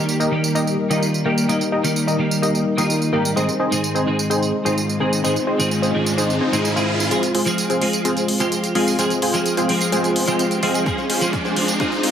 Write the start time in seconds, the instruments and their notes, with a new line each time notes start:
Already playing: clean electric guitar D#3 G3 A#3 G4, analog synth pad G3 D#4 A#4
0.09 tambourine
0.20 supersaw synth A#3 D#4 G4 A#4 D#5, tambourine
0.31 clean electric guitar D#3 G3 A#3 G4
0.44 tambourine
0.55 supersaw synth A#3 D#4 G4 A#4 D#5, tambourine
0.67 tambourine
0.89 clean electric guitar D#3 G3 A#3 F4, supersaw synth A#3 D#4 G4 A#4 D#5, tambourine
1.02 tambourine
1.14 tambourine
1.24 clean electric guitar D#3 G3 A#3 G4, supersaw synth A#3 D#4 G4 A#4 G5
1.38 tambourine
1.48 clean electric guitar D#3 G3 A#3 G4, supersaw synth A#3 D#4 G4 A#4 D#5, tambourine
1.61 tambourine
1.72 supersaw synth A#3 D#4 G4 A#4 D#5
1.83 clean electric guitar D#3 G3 A#3 G4, tambourine
1.96 tambourine
2.07 supersaw synth A#3 D#4 G4 A#4 D#5, tambourine
2.18 clean electric guitar D#3 G3 A#3 G4
2.31 tambourine
2.42 supersaw synth A#3 D#4 G4 A#4 D#5, tambourine
2.55 tambourine
2.77 clean electric guitar D#3 G3 A#3 F4, supersaw synth A#3 D#4 G4 A#4 D#5, tambourine
2.90 tambourine
3.02 tambourine
3.12 clean electric guitar G#2 D#3 G3 A#3 G4, supersaw synth A#3 D#4 G4 A#4 G5
3.25 tambourine
3.35 clean electric guitar G#2 D#3 G#3 C4 G#4, analog synth pad G#3 C5, supersaw synth C4 D#4 G#4 C5 D#5, tambourine, riser
3.49 tambourine
3.60 supersaw synth C4 D#4 G#4 C5 D#5
3.71 clean electric guitar G#2 D#3 G#3 C4 G#4, tambourine
3.84 tambourine
3.95 supersaw synth C4 D#4 G#4 C5 D#5, tambourine
4.06 clean electric guitar G#2 D#3 G#3 C4 G#4
4.19 tambourine
4.30 supersaw synth C4 D#4 G#4 C5 D#5, tambourine
4.42 tambourine
4.65 clean electric guitar G#2 D#3 G#3 C4 F4, supersaw synth C4 D#4 G#4 C5 D#5, tambourine
4.78 tambourine
4.89 tambourine
5.00 clean electric guitar G#2 D#3 G#3 C4 G#4, supersaw synth C4 D#4 G#4 C5 G#5
5.13 tambourine
5.23 clean electric guitar G#2 D#3 G#3 C4 G#4, supersaw synth C4 D#4 G#4 C5 D#5, analog synth pad F4, tambourine
5.36 tambourine
5.47 supersaw synth C4 D#4 G#4 C5 D#5
5.58 clean electric guitar G#2 D#3 G#3 C4 G#4, tambourine
5.71 tambourine
5.82 supersaw synth C4 D#4 G#4 C5 D#5, tambourine
5.93 clean electric guitar G#2 D#3 G#3 C4 G#4
6.06 tambourine
6.17 supersaw synth C4 D#4 G#4 C5 D#5, tambourine
6.30 tambourine
6.41 supersaw synth C4 D#4 G#4 C5 D#5
6.52 clean electric guitar G#2 D#3 G#3 C4 G#4, supersaw synth C4 D#4 G#4 C5 D#5, tambourine
6.65 tambourine
6.75 clean electric guitar G#2 D#3 G#3 C4 G#4, supersaw synth C4 D#4 G#4 C5 F5, tambourine
7.00 tambourine
7.10 clean electric guitar F3 G#3 C4 G#4, supersaw synth G#3 C4 F4 G#4 C5, analog synth pad G#3 F4 C5, closed hi-hat, tambourine, riser
7.23 closed hi-hat, tambourine
7.35 supersaw synth G#3 C4 F4 G#4 C5, open hi-hat
7.45 clean electric guitar F3 G#3 C4 G#4, closed hi-hat, tambourine
7.58 closed hi-hat, tambourine
7.70 supersaw synth G#3 C4 F4 G#4 C5, closed hi-hat, tambourine
7.81 clean electric guitar F3 G#3 C4 G#4, open hi-hat
7.93 closed hi-hat, tambourine
8.05 supersaw synth G#3 C4 F4 G#4 C5, closed hi-hat, tambourine
8.17 closed hi-hat, tambourine
8.28 open hi-hat
8.39 clean electric guitar F3 G#3 C4 G4, supersaw synth G#3 C4 F4 G#4 C5, closed hi-hat, tambourine
8.52 closed hi-hat, tambourine
8.64 closed hi-hat, tambourine
8.75 clean electric guitar F3 G#3 C4 G#4, supersaw synth G#3 C4 F4 G#4 F5, open hi-hat
8.88 tambourine
8.98 clean electric guitar F3 G#3 C4 G#4, supersaw synth G#3 C4 F4 G#4 C5, closed hi-hat, tambourine
9.10 closed hi-hat, tambourine
9.22 supersaw synth G#3 C4 F4 G#4 C5, open hi-hat
9.33 clean electric guitar F3 G#3 C4 G#4, closed hi-hat, tambourine
9.46 closed hi-hat, tambourine
9.57 supersaw synth G#3 C4 F4 G#4 C5, closed hi-hat, tambourine
9.68 clean electric guitar F3 G#3 C4 G#4, open hi-hat
9.81 closed hi-hat, tambourine
9.92 supersaw synth G#3 C4 F4 G#4 C5, closed hi-hat, tambourine
10.04 closed hi-hat, tambourine
10.16 open hi-hat
10.27 clean electric guitar F3 G#3 C4 G4, supersaw synth G#3 C4 F4 G#4 C5, closed hi-hat, tambourine
10.39 closed hi-hat, tambourine
10.51 closed hi-hat, tambourine
10.62 clean electric guitar F3 G#3 C4 G#4, supersaw synth G#3 C4 F4 G#4 F5, open hi-hat
10.74 closed hi-hat, tambourine
10.85 clean electric guitar F3 G#3 C4 G#4, supersaw synth G#3 C4 F4 G#4 C5, kick, closed hi-hat, tambourine
10.98 closed hi-hat, tambourine
11.10 supersaw synth G#3 C4 F4 G#4 C5, open hi-hat
11.21 clean electric guitar F3 G#3 C4 G#4, closed hi-hat, tambourine
11.33 kick, closed hi-hat, tambourine
11.45 supersaw synth G#3 C4 F4 G#4 C5, closed hi-hat, tambourine
11.56 clean electric guitar F3 G#3 C4 G#4, open hi-hat
11.68 closed hi-hat, tambourine
11.79 clean electric guitar F3 G#3 C4 G#4, supersaw synth G#3 C4 F4 G#4 C5, kick, closed hi-hat, tambourine
11.92 closed hi-hat, tambourine
12.03 supersaw synth G#3 C4 F4 G#4 C5, open hi-hat